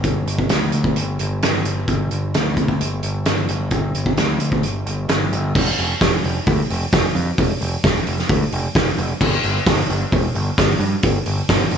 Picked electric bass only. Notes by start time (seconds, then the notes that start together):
0.04 G1
0.26 G1
0.50 D2
0.74 D2
0.97 G1
1.20 G1
1.43 G1
1.65 G1
1.88 G1
2.11 G1
2.35 D2
2.57 D2
2.80 G1
3.03 G1
3.26 G1
3.49 G1
3.71 G1
3.95 G1
4.18 D2
4.41 D2
4.63 G1
4.86 G1
5.08 G1
5.32 G1
5.55 F1
5.78 F1
6.02 F1
6.24 F1
6.47 D2
6.70 F1
6.93 F1
7.15 F2
7.39 F1
7.61 F1
7.84 F1
8.07 F1
8.29 D2
8.53 F1
8.75 F1
8.98 F1
9.21 G1
9.44 G1
9.67 G1
9.90 G1
10.12 E1
10.35 G1
10.58 G1
10.80 G2
11.03 G1
11.26 G1
11.49 G1
11.71 G1